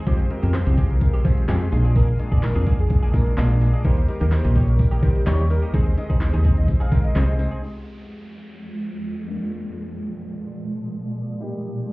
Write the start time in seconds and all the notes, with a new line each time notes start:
0.06 F2 G#3 C4 F4 G4 G#4 C5 F5 G5 C6, kick, closed hi-hat
0.19 muted clean electric guitar stroke, closed hi-hat
0.30 G#3 C4 F4 G4 A#4, muted clean electric guitar stroke, closed hi-hat
0.42 F2 G#3 C4 G4 A#4, closed hi-hat
0.54 G#3 C4 F4 G4 G#4 C5, muted clean electric guitar stroke, snare, clap, closed hi-hat, tambourine
0.66 C2 G#3 C4 G4, closed hi-hat
0.77 G#3 C4 F4 G4 G#4, kick, closed hi-hat, tambourine
0.90 A#4, muted clean electric guitar stroke, closed hi-hat
1.01 G#3 C4 F4 G4 G#4, muted clean electric guitar stroke, kick, closed hi-hat, tambourine
1.13 G#3 C4 G4, closed hi-hat
1.25 F3 G#3 C4 F4 G4 G#4 C5, muted clean electric guitar stroke, kick, closed hi-hat, tambourine
1.37 muted clean electric guitar stroke, closed hi-hat
1.48 F2 G#3 C4 F4 G4 G#4, snare, clap, closed hi-hat, tambourine
1.61 muted clean electric guitar stroke, closed hi-hat
1.72 A#1 G#3 A#3 D4 F4 G#4 A#5 D6, muted clean electric guitar stroke, open hi-hat, tambourine
1.84 A#3 D4 G#4, closed hi-hat
1.95 A#3 D4 G#4 A#4, kick, closed hi-hat, tambourine
2.08 muted clean electric guitar stroke, closed hi-hat
2.19 G#3 A#3 D4 F4 G#4, muted clean electric guitar stroke, closed hi-hat, tambourine
2.32 A#1 A#3 D4 G#4 D5, kick, closed hi-hat
2.43 G#3 A#3 D4 F4 G#4 A#4, muted clean electric guitar stroke, snare, clap, closed hi-hat, tambourine
2.55 F2 A#3 D4 G#4, closed hi-hat
2.66 G#3 A#3 D4 F4 G#4, kick, closed hi-hat, tambourine
2.79 G#4, muted clean electric guitar stroke, closed hi-hat
2.90 G#3 A#3 D4 F4 G#4, muted clean electric guitar stroke, kick, closed hi-hat, tambourine
3.02 A#3 D4 G#4, closed hi-hat
3.14 A#2 G#3 A#3 D4 F4 G#4 A#4, muted clean electric guitar stroke, kick, closed hi-hat, tambourine
3.26 muted clean electric guitar stroke, closed hi-hat
3.37 A#1 G#3 A#3 D4 F4 G#4, snare, clap, closed hi-hat, tambourine
3.50 muted clean electric guitar stroke, closed hi-hat
3.61 G#3 A#3 D4 F4 G#4, muted clean electric guitar stroke, open hi-hat, tambourine
3.73 A#3 D4 G#4, closed hi-hat
3.84 D#2 G3 A#3 D#4 G4 A#4 C5 D#5 D#6, kick, closed hi-hat
3.97 muted clean electric guitar stroke, closed hi-hat
4.08 G3 A#3 D#4 G4 A#4, muted clean electric guitar stroke, closed hi-hat, tambourine
4.20 D#2 A#3 D#4 G4 A#4, closed hi-hat
4.31 G3 A#3 D#4 G4 A#4 C5, muted clean electric guitar stroke, snare, clap, closed hi-hat, tambourine
4.44 A#1 A#3 D#4 G4, closed hi-hat
4.55 G3 A#3 D#4 G4 C#5, kick, closed hi-hat, tambourine
4.68 A#4, muted clean electric guitar stroke, closed hi-hat
4.79 G3 A#3 D#4 G4 A#4, muted clean electric guitar stroke, kick, closed hi-hat, tambourine
4.91 A#3 D#4 G4, closed hi-hat
5.03 D#3 G3 A#3 D#4 G4 A#4 C5, kick, closed hi-hat, tambourine
5.15 muted clean electric guitar stroke, closed hi-hat
5.26 D#2 G3 A#3 D#4 G4 C#5, snare, clap, closed hi-hat, tambourine
5.39 muted clean electric guitar stroke, closed hi-hat
5.50 G3 A#3 D#4 G4 A#4, muted clean electric guitar stroke, open hi-hat, tambourine
5.62 A#3 D#4 G4, closed hi-hat
5.73 D#2 G#3 C4 D#4 G#4 C5 C6, kick, closed hi-hat, tambourine
5.86 muted clean electric guitar stroke, closed hi-hat
5.97 G#3 C4 D#4 G#4 D#5, muted clean electric guitar stroke, closed hi-hat, tambourine
6.09 D#2 C4 D#4 G#4 C5, kick, closed hi-hat
6.21 G#3 C4 D#4 G#4 C5, snare, clap, closed hi-hat, tambourine
6.33 D#2 C4 D#4 G#4, closed hi-hat
6.44 G#3 C4 D#4 G#4 C5, kick, closed hi-hat, tambourine
6.57 D#5, muted clean electric guitar stroke, closed hi-hat
6.68 G#3 C4 D#4 G#4 C5, muted clean electric guitar stroke, kick, closed hi-hat, tambourine
6.80 C4 D#4 G#4 F5, closed hi-hat
6.91 D#3 G#3 C4 D#4 G#4 A#4, muted clean electric guitar stroke, kick, closed hi-hat, tambourine
7.04 D#5, muted clean electric guitar stroke, closed hi-hat
7.15 C2 G#3 C4 D#4 G#4 C5, snare, clap, closed hi-hat, tambourine
7.28 muted clean electric guitar stroke, closed hi-hat
7.39 G#3 C4 D#4 G#4 C5, muted clean electric guitar stroke, closed hi-hat, tambourine
7.51 C4 D#4 G#4, closed hi-hat
7.62 F2 F3 G#3 C4 F4 G4 G5, downlifter
9.28 A#2 G#3 A#3 D4 F4 D5
11.40 D#2 D#3 G3 A#3 D#4 G4 A#4